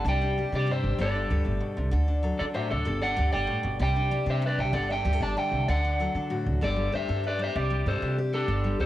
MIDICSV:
0, 0, Header, 1, 5, 480
1, 0, Start_track
1, 0, Tempo, 312337
1, 1531, Time_signature, 12, 3, 24, 8
1, 13615, End_track
2, 0, Start_track
2, 0, Title_t, "Clean electric guitar"
2, 0, Program_c, 0, 27
2, 135, Note_on_c, 0, 74, 66
2, 136, Note_on_c, 0, 79, 85
2, 782, Note_off_c, 0, 79, 0
2, 785, Note_off_c, 0, 74, 0
2, 851, Note_on_c, 0, 74, 83
2, 864, Note_on_c, 0, 67, 64
2, 1063, Note_off_c, 0, 67, 0
2, 1096, Note_on_c, 0, 72, 78
2, 1102, Note_off_c, 0, 74, 0
2, 1102, Note_on_c, 0, 76, 73
2, 1524, Note_off_c, 0, 72, 0
2, 1553, Note_off_c, 0, 76, 0
2, 1557, Note_on_c, 0, 69, 65
2, 1559, Note_on_c, 0, 74, 68
2, 2921, Note_off_c, 0, 74, 0
2, 2923, Note_off_c, 0, 69, 0
2, 3674, Note_on_c, 0, 69, 56
2, 3680, Note_on_c, 0, 74, 70
2, 3752, Note_off_c, 0, 69, 0
2, 3753, Note_off_c, 0, 74, 0
2, 3914, Note_on_c, 0, 72, 62
2, 3928, Note_on_c, 0, 76, 69
2, 4146, Note_off_c, 0, 72, 0
2, 4158, Note_on_c, 0, 69, 67
2, 4170, Note_off_c, 0, 76, 0
2, 4170, Note_on_c, 0, 74, 72
2, 4612, Note_off_c, 0, 69, 0
2, 4630, Note_off_c, 0, 74, 0
2, 4646, Note_on_c, 0, 74, 72
2, 4657, Note_on_c, 0, 78, 82
2, 5095, Note_off_c, 0, 74, 0
2, 5112, Note_on_c, 0, 74, 79
2, 5117, Note_off_c, 0, 78, 0
2, 5123, Note_on_c, 0, 79, 76
2, 5791, Note_off_c, 0, 74, 0
2, 5792, Note_off_c, 0, 79, 0
2, 5868, Note_on_c, 0, 74, 70
2, 5881, Note_on_c, 0, 79, 91
2, 6529, Note_off_c, 0, 74, 0
2, 6536, Note_off_c, 0, 79, 0
2, 6607, Note_on_c, 0, 72, 67
2, 6616, Note_on_c, 0, 76, 90
2, 6813, Note_off_c, 0, 72, 0
2, 6817, Note_off_c, 0, 76, 0
2, 6855, Note_on_c, 0, 71, 65
2, 6868, Note_on_c, 0, 74, 77
2, 7058, Note_off_c, 0, 71, 0
2, 7061, Note_off_c, 0, 74, 0
2, 7070, Note_on_c, 0, 76, 78
2, 7072, Note_on_c, 0, 79, 80
2, 7274, Note_off_c, 0, 76, 0
2, 7280, Note_on_c, 0, 74, 82
2, 7295, Note_off_c, 0, 79, 0
2, 7295, Note_on_c, 0, 78, 104
2, 7507, Note_off_c, 0, 74, 0
2, 7532, Note_off_c, 0, 78, 0
2, 7546, Note_on_c, 0, 76, 79
2, 7562, Note_on_c, 0, 79, 99
2, 7984, Note_off_c, 0, 76, 0
2, 7993, Note_off_c, 0, 79, 0
2, 8031, Note_on_c, 0, 74, 78
2, 8039, Note_on_c, 0, 81, 94
2, 8245, Note_off_c, 0, 74, 0
2, 8267, Note_on_c, 0, 76, 70
2, 8268, Note_off_c, 0, 81, 0
2, 8274, Note_on_c, 0, 79, 90
2, 8706, Note_off_c, 0, 76, 0
2, 8732, Note_on_c, 0, 74, 66
2, 8746, Note_off_c, 0, 79, 0
2, 8753, Note_on_c, 0, 78, 83
2, 9869, Note_off_c, 0, 74, 0
2, 9879, Note_off_c, 0, 78, 0
2, 10184, Note_on_c, 0, 69, 69
2, 10207, Note_on_c, 0, 74, 94
2, 10623, Note_off_c, 0, 69, 0
2, 10659, Note_on_c, 0, 72, 68
2, 10680, Note_off_c, 0, 74, 0
2, 10686, Note_on_c, 0, 76, 96
2, 11100, Note_off_c, 0, 72, 0
2, 11161, Note_off_c, 0, 76, 0
2, 11171, Note_on_c, 0, 71, 67
2, 11185, Note_on_c, 0, 74, 83
2, 11374, Note_off_c, 0, 71, 0
2, 11403, Note_off_c, 0, 74, 0
2, 11404, Note_on_c, 0, 72, 66
2, 11430, Note_on_c, 0, 76, 85
2, 11609, Note_on_c, 0, 67, 71
2, 11611, Note_off_c, 0, 72, 0
2, 11620, Note_off_c, 0, 76, 0
2, 11620, Note_on_c, 0, 74, 90
2, 12056, Note_off_c, 0, 67, 0
2, 12106, Note_on_c, 0, 69, 68
2, 12109, Note_off_c, 0, 74, 0
2, 12113, Note_on_c, 0, 72, 83
2, 12545, Note_off_c, 0, 69, 0
2, 12548, Note_off_c, 0, 72, 0
2, 12818, Note_on_c, 0, 69, 87
2, 12833, Note_on_c, 0, 62, 63
2, 13484, Note_off_c, 0, 69, 0
2, 13492, Note_off_c, 0, 62, 0
2, 13532, Note_on_c, 0, 69, 55
2, 13536, Note_on_c, 0, 72, 64
2, 13615, Note_off_c, 0, 69, 0
2, 13615, Note_off_c, 0, 72, 0
2, 13615, End_track
3, 0, Start_track
3, 0, Title_t, "Steel-string acoustic guitar"
3, 0, Program_c, 1, 25
3, 83, Note_on_c, 1, 48, 71
3, 97, Note_on_c, 1, 55, 59
3, 111, Note_on_c, 1, 62, 57
3, 121, Note_on_c, 1, 67, 63
3, 327, Note_off_c, 1, 62, 0
3, 333, Note_on_c, 1, 62, 57
3, 564, Note_off_c, 1, 55, 0
3, 567, Note_off_c, 1, 67, 0
3, 578, Note_on_c, 1, 55, 56
3, 593, Note_on_c, 1, 67, 57
3, 815, Note_off_c, 1, 62, 0
3, 821, Note_on_c, 1, 62, 61
3, 1013, Note_off_c, 1, 67, 0
3, 1023, Note_on_c, 1, 43, 68
3, 1039, Note_on_c, 1, 67, 59
3, 1047, Note_off_c, 1, 48, 0
3, 1493, Note_off_c, 1, 43, 0
3, 1508, Note_off_c, 1, 55, 0
3, 1512, Note_on_c, 1, 43, 77
3, 1521, Note_off_c, 1, 67, 0
3, 1526, Note_on_c, 1, 55, 62
3, 1533, Note_off_c, 1, 62, 0
3, 1539, Note_on_c, 1, 62, 55
3, 1558, Note_on_c, 1, 69, 71
3, 1765, Note_off_c, 1, 62, 0
3, 1771, Note_on_c, 1, 62, 51
3, 1986, Note_off_c, 1, 55, 0
3, 1989, Note_off_c, 1, 69, 0
3, 2001, Note_on_c, 1, 55, 67
3, 2013, Note_on_c, 1, 69, 64
3, 2216, Note_off_c, 1, 43, 0
3, 2222, Note_on_c, 1, 45, 63
3, 2460, Note_off_c, 1, 45, 0
3, 2466, Note_on_c, 1, 47, 57
3, 2716, Note_on_c, 1, 48, 64
3, 2718, Note_off_c, 1, 47, 0
3, 2934, Note_off_c, 1, 48, 0
3, 2939, Note_off_c, 1, 55, 0
3, 2940, Note_off_c, 1, 69, 0
3, 2940, Note_on_c, 1, 50, 71
3, 2960, Note_on_c, 1, 69, 67
3, 3188, Note_off_c, 1, 62, 0
3, 3194, Note_on_c, 1, 62, 56
3, 3414, Note_off_c, 1, 69, 0
3, 3423, Note_on_c, 1, 54, 61
3, 3439, Note_on_c, 1, 69, 59
3, 3690, Note_off_c, 1, 62, 0
3, 3696, Note_on_c, 1, 62, 57
3, 3907, Note_on_c, 1, 45, 65
3, 3921, Note_on_c, 1, 66, 52
3, 4366, Note_off_c, 1, 50, 0
3, 4370, Note_off_c, 1, 54, 0
3, 4371, Note_off_c, 1, 45, 0
3, 4373, Note_off_c, 1, 66, 0
3, 4373, Note_off_c, 1, 69, 0
3, 4382, Note_on_c, 1, 43, 69
3, 4393, Note_on_c, 1, 69, 70
3, 4628, Note_off_c, 1, 62, 0
3, 4634, Note_on_c, 1, 62, 52
3, 4850, Note_off_c, 1, 69, 0
3, 4861, Note_on_c, 1, 55, 66
3, 4868, Note_on_c, 1, 69, 75
3, 5089, Note_off_c, 1, 43, 0
3, 5108, Note_on_c, 1, 43, 64
3, 5329, Note_off_c, 1, 43, 0
3, 5335, Note_on_c, 1, 45, 60
3, 5574, Note_off_c, 1, 45, 0
3, 5580, Note_on_c, 1, 47, 63
3, 5806, Note_off_c, 1, 55, 0
3, 5810, Note_off_c, 1, 69, 0
3, 5830, Note_on_c, 1, 48, 66
3, 5835, Note_off_c, 1, 47, 0
3, 5842, Note_on_c, 1, 67, 64
3, 5879, Note_off_c, 1, 62, 0
3, 6088, Note_on_c, 1, 62, 55
3, 6311, Note_off_c, 1, 67, 0
3, 6319, Note_on_c, 1, 55, 64
3, 6329, Note_on_c, 1, 67, 63
3, 6540, Note_off_c, 1, 62, 0
3, 6547, Note_on_c, 1, 62, 61
3, 6777, Note_off_c, 1, 67, 0
3, 6796, Note_on_c, 1, 67, 72
3, 6801, Note_off_c, 1, 48, 0
3, 7255, Note_off_c, 1, 55, 0
3, 7266, Note_on_c, 1, 43, 75
3, 7269, Note_off_c, 1, 67, 0
3, 7275, Note_on_c, 1, 69, 67
3, 7527, Note_off_c, 1, 62, 0
3, 7533, Note_on_c, 1, 62, 54
3, 7757, Note_off_c, 1, 69, 0
3, 7758, Note_on_c, 1, 55, 67
3, 7763, Note_on_c, 1, 67, 59
3, 7880, Note_off_c, 1, 67, 0
3, 7880, Note_on_c, 1, 69, 55
3, 7985, Note_off_c, 1, 62, 0
3, 8003, Note_on_c, 1, 62, 60
3, 8230, Note_off_c, 1, 69, 0
3, 8248, Note_on_c, 1, 50, 61
3, 8254, Note_on_c, 1, 69, 61
3, 8695, Note_off_c, 1, 55, 0
3, 8697, Note_off_c, 1, 62, 0
3, 8699, Note_off_c, 1, 69, 0
3, 8700, Note_off_c, 1, 50, 0
3, 8717, Note_off_c, 1, 43, 0
3, 8737, Note_on_c, 1, 50, 68
3, 8743, Note_on_c, 1, 69, 66
3, 8986, Note_on_c, 1, 62, 60
3, 9208, Note_off_c, 1, 69, 0
3, 9219, Note_on_c, 1, 54, 62
3, 9227, Note_on_c, 1, 69, 64
3, 9444, Note_off_c, 1, 62, 0
3, 9463, Note_on_c, 1, 62, 58
3, 9683, Note_on_c, 1, 45, 67
3, 9691, Note_on_c, 1, 66, 59
3, 10137, Note_off_c, 1, 45, 0
3, 10141, Note_off_c, 1, 66, 0
3, 10143, Note_off_c, 1, 50, 0
3, 10145, Note_off_c, 1, 54, 0
3, 10147, Note_off_c, 1, 62, 0
3, 10149, Note_off_c, 1, 69, 0
3, 10160, Note_on_c, 1, 43, 67
3, 10174, Note_on_c, 1, 55, 61
3, 10185, Note_on_c, 1, 62, 54
3, 10199, Note_on_c, 1, 69, 55
3, 10373, Note_off_c, 1, 55, 0
3, 10392, Note_on_c, 1, 55, 53
3, 10632, Note_off_c, 1, 62, 0
3, 10638, Note_on_c, 1, 62, 59
3, 10871, Note_off_c, 1, 69, 0
3, 10889, Note_on_c, 1, 69, 65
3, 11101, Note_off_c, 1, 69, 0
3, 11120, Note_on_c, 1, 69, 55
3, 11341, Note_off_c, 1, 55, 0
3, 11359, Note_on_c, 1, 55, 62
3, 11575, Note_off_c, 1, 55, 0
3, 11575, Note_off_c, 1, 69, 0
3, 11604, Note_off_c, 1, 43, 0
3, 11611, Note_on_c, 1, 48, 67
3, 11657, Note_off_c, 1, 62, 0
3, 11836, Note_on_c, 1, 55, 56
3, 12093, Note_on_c, 1, 62, 55
3, 12326, Note_on_c, 1, 67, 58
3, 12555, Note_off_c, 1, 67, 0
3, 12574, Note_on_c, 1, 67, 64
3, 12786, Note_off_c, 1, 55, 0
3, 12804, Note_on_c, 1, 55, 52
3, 13018, Note_off_c, 1, 55, 0
3, 13039, Note_on_c, 1, 43, 69
3, 13051, Note_off_c, 1, 48, 0
3, 13279, Note_on_c, 1, 55, 56
3, 13514, Note_off_c, 1, 62, 0
3, 13520, Note_on_c, 1, 62, 57
3, 13615, Note_off_c, 1, 43, 0
3, 13615, Note_off_c, 1, 55, 0
3, 13615, Note_off_c, 1, 62, 0
3, 13615, Note_off_c, 1, 67, 0
3, 13615, End_track
4, 0, Start_track
4, 0, Title_t, "Upright bass"
4, 0, Program_c, 2, 32
4, 71, Note_on_c, 2, 36, 94
4, 660, Note_off_c, 2, 36, 0
4, 804, Note_on_c, 2, 48, 86
4, 1285, Note_on_c, 2, 33, 79
4, 1308, Note_off_c, 2, 48, 0
4, 1481, Note_off_c, 2, 33, 0
4, 1518, Note_on_c, 2, 31, 93
4, 1911, Note_off_c, 2, 31, 0
4, 2008, Note_on_c, 2, 38, 88
4, 2202, Note_off_c, 2, 38, 0
4, 2239, Note_on_c, 2, 31, 84
4, 2437, Note_off_c, 2, 31, 0
4, 2735, Note_on_c, 2, 36, 80
4, 2927, Note_off_c, 2, 36, 0
4, 2964, Note_on_c, 2, 38, 94
4, 3548, Note_off_c, 2, 38, 0
4, 3697, Note_on_c, 2, 50, 86
4, 4167, Note_on_c, 2, 38, 86
4, 4190, Note_off_c, 2, 50, 0
4, 4362, Note_off_c, 2, 38, 0
4, 4415, Note_on_c, 2, 31, 92
4, 4800, Note_off_c, 2, 31, 0
4, 4890, Note_on_c, 2, 38, 89
4, 5084, Note_off_c, 2, 38, 0
4, 5135, Note_on_c, 2, 31, 89
4, 5327, Note_off_c, 2, 31, 0
4, 5602, Note_on_c, 2, 31, 86
4, 5799, Note_off_c, 2, 31, 0
4, 5836, Note_on_c, 2, 36, 96
4, 6422, Note_off_c, 2, 36, 0
4, 6554, Note_on_c, 2, 48, 88
4, 7046, Note_on_c, 2, 36, 87
4, 7069, Note_off_c, 2, 48, 0
4, 7241, Note_off_c, 2, 36, 0
4, 7266, Note_on_c, 2, 31, 96
4, 7662, Note_off_c, 2, 31, 0
4, 7760, Note_on_c, 2, 38, 82
4, 7957, Note_off_c, 2, 38, 0
4, 7998, Note_on_c, 2, 31, 88
4, 8196, Note_off_c, 2, 31, 0
4, 8478, Note_on_c, 2, 36, 80
4, 8676, Note_off_c, 2, 36, 0
4, 8736, Note_on_c, 2, 38, 89
4, 9313, Note_off_c, 2, 38, 0
4, 9448, Note_on_c, 2, 50, 88
4, 9934, Note_on_c, 2, 38, 84
4, 9957, Note_off_c, 2, 50, 0
4, 10125, Note_off_c, 2, 38, 0
4, 10174, Note_on_c, 2, 31, 93
4, 10559, Note_off_c, 2, 31, 0
4, 10660, Note_on_c, 2, 38, 75
4, 10849, Note_off_c, 2, 38, 0
4, 10902, Note_on_c, 2, 43, 82
4, 11478, Note_off_c, 2, 43, 0
4, 11612, Note_on_c, 2, 36, 82
4, 11998, Note_off_c, 2, 36, 0
4, 12081, Note_on_c, 2, 43, 87
4, 12278, Note_off_c, 2, 43, 0
4, 12328, Note_on_c, 2, 48, 84
4, 12910, Note_off_c, 2, 48, 0
4, 13032, Note_on_c, 2, 31, 99
4, 13427, Note_off_c, 2, 31, 0
4, 13518, Note_on_c, 2, 38, 74
4, 13615, Note_off_c, 2, 38, 0
4, 13615, End_track
5, 0, Start_track
5, 0, Title_t, "Muted steel-string acoustic guitar strokes"
5, 6788, Note_on_c, 9, 29, 64
5, 6942, Note_off_c, 9, 29, 0
5, 13615, End_track
0, 0, End_of_file